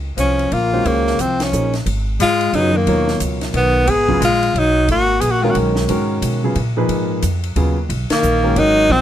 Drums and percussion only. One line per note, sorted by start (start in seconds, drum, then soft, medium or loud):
0.18 hi-hat pedal medium
0.18 ride medium
0.39 ride soft
0.52 ride soft
0.86 ride medium
1.07 snare soft
1.19 hi-hat pedal medium
1.19 ride medium
1.40 snare medium
1.40 ride medium
1.53 hi-hat pedal medium
1.74 snare soft
1.74 ride soft
1.86 ride medium
2.20 hi-hat pedal soft
2.20 ride medium
2.41 ride soft
2.53 ride medium
2.87 ride medium
3.08 snare soft
3.20 hi-hat pedal medium
3.20 ride medium
3.41 snare soft
3.41 ride soft
3.54 ride medium
3.87 ride medium
4.09 kick soft
4.22 hi-hat pedal medium
4.22 ride medium
4.43 ride soft
4.56 ride medium
4.88 ride medium
5.21 hi-hat pedal soft
5.21 ride medium
5.55 ride medium
5.76 snare medium
5.89 ride medium
6.22 hi-hat pedal soft
6.22 ride medium
6.55 ride medium
6.89 ride medium
7.22 hi-hat pedal medium
7.22 ride medium
7.44 ride soft
7.56 ride medium
7.90 ride medium
8.10 snare medium
8.10 ride medium
8.23 hi-hat pedal medium
8.56 ride medium
8.90 high tom medium